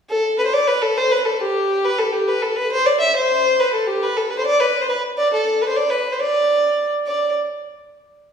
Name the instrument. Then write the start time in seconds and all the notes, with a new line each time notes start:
fiddle
0.10 A4
0.38 B4
0.46 C5
0.54 D5
0.68 B4
0.82 A4
0.98 C5
1.12 B4
1.25 A4
1.36 A4
1.41 G4
1.85 B4
1.99 A4
2.12 G4
2.28 B4
2.42 A4
2.56 B4
2.72 C5
2.86 D5
3.00 E5
3.16 C5
3.60 B4
3.73 A4
3.87 G4
4.03 B4
4.17 A4
4.30 B4
4.38 C5
4.46 D5
4.60 B4
4.81 C5
4.89 B4
5.18 D5
5.33 A4
5.61 B4
5.69 C5
5.77 D5
5.90 B4
6.13 C5
6.20 D5
7.07 D5